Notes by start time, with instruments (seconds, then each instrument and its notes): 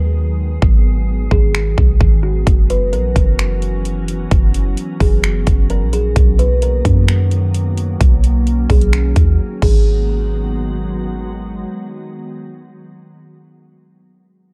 Already playing: 808-style bass D#2, ambient pad D#3 F#3 G#3 B3 G#4
0.62 808-style bass G#1, kick
1.31 808-style bass G#1, kalimba G#4, kick
1.55 finger snap
1.78 808-style bass B1, kick
2.01 808-style bass G#1, kick
2.23 kalimba F#4
2.47 808-style bass F#1, ambient pad E3 F#3 C#4 F#4, kick, closed hi-hat
2.70 kalimba B4, closed hi-hat
2.93 808-style bass A#1, kalimba A#4, closed hi-hat
3.16 808-style bass F#1, kick, closed hi-hat
3.39 finger snap, closed hi-hat
3.62 closed hi-hat
3.85 closed hi-hat
4.08 closed hi-hat
4.31 808-style bass F#1, kick, closed hi-hat
4.54 closed hi-hat
4.77 closed hi-hat
5.00 808-style bass F#1, kalimba G#4, kick, open hi-hat
5.24 finger snap, closed hi-hat
5.47 808-style bass F#1, kick, closed hi-hat
5.70 kalimba A#4, closed hi-hat
5.82 808-style bass A#1
5.93 kalimba G#4, closed hi-hat
6.16 808-style bass B1, ambient pad D#3 F#3 A#3 B3, kick, closed hi-hat
6.39 kalimba B4, closed hi-hat
6.62 kalimba A#4, closed hi-hat
6.85 808-style bass F#2, kick, closed hi-hat
7.08 finger snap, closed hi-hat
7.31 closed hi-hat
7.54 closed hi-hat
7.78 closed hi-hat
8.01 808-style bass B1, ambient pad C#4, kick, closed hi-hat
8.24 closed hi-hat
8.47 closed hi-hat
8.70 808-style bass B1, kalimba G#4, kick, closed hi-hat, open hi-hat
8.81 closed hi-hat
8.93 finger snap, closed hi-hat
9.16 808-style bass D#2, kick, closed hi-hat
9.62 808-style bass G#1, ambient pad D#3 F#3 G#3 B3 F#4, kalimba G#4, kick, crash